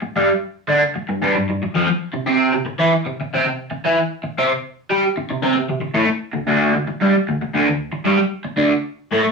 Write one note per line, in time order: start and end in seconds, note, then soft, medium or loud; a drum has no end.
0.02 muted overdriven electric guitar stroke medium
0.16 0.28 G2 medium
0.16 0.29 G3 loud
0.68 0.81 D3 medium
0.68 0.81 D4 loud
0.82 muted overdriven electric guitar stroke medium
0.96 muted overdriven electric guitar stroke medium
1.09 1.20 G2 medium
1.22 1.34 G2 medium
1.22 1.35 G3 loud
1.35 1.47 G2 medium
1.49 1.61 G2 medium
1.63 muted overdriven electric guitar stroke medium
1.75 1.87 F2 medium
1.75 1.87 F3 loud
1.88 muted overdriven electric guitar stroke medium
2.13 2.25 C3 medium
2.26 2.52 C3 medium
2.26 2.53 C4 medium
2.54 2.65 C3 medium
2.66 muted overdriven electric guitar stroke medium
2.79 2.91 E3 medium
2.79 2.92 E4 loud
2.92 muted overdriven electric guitar stroke medium
3.06 3.19 C3 medium
3.20 muted overdriven electric guitar stroke medium
3.33 3.45 C3 medium
3.33 3.46 C4 loud
3.46 3.67 C3 medium
3.71 muted overdriven electric guitar stroke medium
3.85 3.97 E3 medium
3.85 3.98 E4 medium
3.98 muted overdriven electric guitar stroke medium
4.24 muted overdriven electric guitar stroke medium
4.38 4.50 C3 medium
4.38 4.50 C4 loud
4.90 5.03 G3 medium
4.90 5.03 G4 loud
5.03 muted overdriven electric guitar stroke medium
5.17 muted overdriven electric guitar stroke medium
5.30 5.41 C3 medium
5.42 5.55 C3 medium
5.42 5.55 C4 loud
5.56 5.68 C3 medium
5.69 5.80 C3 medium
5.81 muted overdriven electric guitar stroke medium
5.94 6.06 A2 medium
5.94 6.08 A3 medium
6.07 muted overdriven electric guitar stroke medium
6.33 6.46 D2 medium
6.47 6.73 D2 medium
6.47 6.74 D3 loud
6.75 6.87 D2 medium
6.88 muted overdriven electric guitar stroke medium
7.01 7.14 G2 loud
7.01 7.14 G3 loud
7.15 muted overdriven electric guitar stroke medium
7.29 7.41 D2 medium
7.42 muted overdriven electric guitar stroke medium
7.54 7.66 D2 medium
7.54 7.67 D3 loud
7.68 7.89 D2 medium
7.93 muted overdriven electric guitar stroke medium
8.05 8.18 G2 medium
8.05 8.19 G3 medium
8.19 muted overdriven electric guitar stroke medium
8.45 muted overdriven electric guitar stroke medium
8.57 8.71 D2 medium
8.57 8.71 D3 medium
9.11 9.24 A2 medium
9.11 9.25 A3 loud
9.25 muted overdriven electric guitar stroke medium